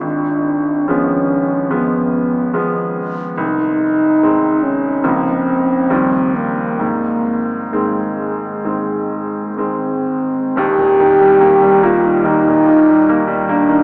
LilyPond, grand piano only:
\new Staff \with { instrumentName = "Grand piano" } { \clef bass \time 4/4 \key aes \major \tempo 4 = 71 aes,,4 <f aes ces'>4 <f aes ces'>4 <f aes ces'>4 | c,4 <ees aes c'>4 <des, f bes>4 <ees, f g c'>4 | aes,4 <ees aes c'>4 <ees aes c'>4 <ees aes c'>4 | \key ees \major <ees,, ees,>16 bes,16 ees16 g16 bes16 g16 bes16 ees16 ees,16 bes,16 ees16 g16 bes16 g16 bes16 ees16 | }